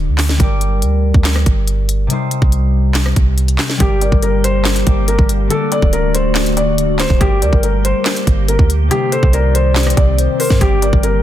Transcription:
Already playing: D3 A3 F#4 D5
0.08 D2
0.18 snare, clap, open hi-hat
0.29 snare
0.37 G1 G3 G4 A#4, kick, closed hi-hat
0.43 D5
0.61 closed hi-hat
0.82 D2, closed hi-hat
1.14 D2, kick
1.25 snare, clap, closed hi-hat
1.36 cross-stick
1.46 G1, kick, closed hi-hat
1.68 closed hi-hat
1.89 closed hi-hat
2.07 C3 G3, closed hi-hat
2.11 D#4 C5
2.31 closed hi-hat
2.42 C2, kick
2.52 closed hi-hat
2.95 snare, clap, closed hi-hat
3.06 cross-stick
3.16 C2, kick, closed hi-hat
3.38 closed hi-hat
3.48 closed hi-hat
3.59 snare, clap
3.70 snare
3.77 G1 D3 G3 A#3 G4, kick, closed hi-hat
3.81 A#4 D5
4.01 A#4 D5, closed hi-hat
4.12 G1, kick
4.22 A#4, closed hi-hat
4.44 C5, closed hi-hat
4.65 snare, clap, closed hi-hat
4.76 closed hi-hat
4.85 G1 G3 G4 A#4 D5, kick, closed hi-hat
5.08 A#4, closed hi-hat
5.19 G1, kick
5.29 closed hi-hat
5.48 D3 A3 F#4 A4, closed hi-hat
5.52 F#4 D5
5.71 A4 D5, closed hi-hat
5.82 D1, kick
5.93 A#4 D5, closed hi-hat
6.14 C5, closed hi-hat
6.35 snare, clap, closed hi-hat
6.46 closed hi-hat
6.57 D5, closed hi-hat
6.78 closed hi-hat
6.99 C5, snare, clap, closed hi-hat
7.10 D1, kick
7.18 G1 G3 A#3 G4 A#4, kick, closed hi-hat
7.24 D5
7.42 D2 A#4 D5, closed hi-hat
7.53 G1, kick
7.63 A#4, closed hi-hat
7.85 C5, closed hi-hat
8.06 snare, clap, closed hi-hat
8.16 closed hi-hat
8.27 G1, kick, closed hi-hat
8.48 A#4, closed hi-hat
8.59 D2, kick
8.70 closed hi-hat
8.88 C3 D#3 G3 C4 G4, closed hi-hat
8.92 D#4 C5
9.12 A4 C5, closed hi-hat
9.23 C2, kick
9.33 A#4 D5, closed hi-hat
9.55 C5, closed hi-hat
9.76 snare, clap, closed hi-hat
9.83 cross-stick, closed hi-hat
9.90 closed hi-hat
9.97 C2 D5, kick, closed hi-hat
10.19 C5, closed hi-hat
10.40 A#4 C5, open hi-hat
10.50 G2, kick, snare
10.58 G1 D3 G3 A#3 G4, kick, closed hi-hat
10.62 A#4 D5
10.82 A#4 D5, closed hi-hat
10.93 G1, kick
11.03 A#4, closed hi-hat

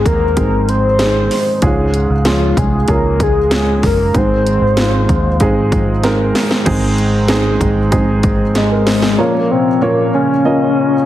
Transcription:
Already playing: G#2 D#3 G#3 C4 D#4 G#4
0.06 D#2 A#4, kick, closed hi-hat
0.36 G#1 G#3 C4 D#4 G#4, kick, closed hi-hat
0.69 C5, closed hi-hat
0.99 G#3 C4 D#4 G#4, snare, closed hi-hat
1.31 snare, open hi-hat
1.62 C#2 G#2 G#3 C#4 F4 G#4, kick, closed hi-hat
1.94 closed hi-hat
2.10 C#2
2.25 G#3 C#4 F4 G#4, snare, closed hi-hat
2.57 C2 G#4, kick, closed hi-hat
2.88 C#2 G#3 C#4 F4 G#4 A#4, kick, closed hi-hat
3.20 G#4, kick, closed hi-hat
3.51 G#3 C#4 F4 G#4, snare, closed hi-hat
3.83 F#1 A#4, kick, snare, open hi-hat
4.14 G#1 G#2 D#3 G#3 C4 D#4 G#4 C5, kick, closed hi-hat
4.47 closed hi-hat
4.61 G#1
4.77 G#3 C4 D#4 F4, snare, closed hi-hat
5.09 D#2, kick, closed hi-hat
5.40 G#1 G#3 C4 D#4 G#4, kick, closed hi-hat
5.72 kick, closed hi-hat
6.03 G#3 C4 D#4 A#4, snare, closed hi-hat
6.35 snare, open hi-hat
6.51 snare
6.66 G#1 G#2 D#3 G#3 C4 D#4 G#4, kick, closed hi-hat, crash
6.98 closed hi-hat
7.28 G#3 C4 D#4 G#4, snare, closed hi-hat
7.61 G#1, kick, closed hi-hat
7.91 G#3 C4 D#4 G#4, kick, closed hi-hat
8.23 kick, closed hi-hat
8.55 G#3 G#4, snare, closed hi-hat
8.71 A#4
8.87 C5, snare, open hi-hat
9.02 G#4, snare
9.18 A#2 F3 A#3 C#4 F4 A#4 C#5
9.51 C4
9.81 A#3 C#4 F4 A#4 C#5
10.14 C#4
10.45 A#3 C#4 F4 A#4 D#5

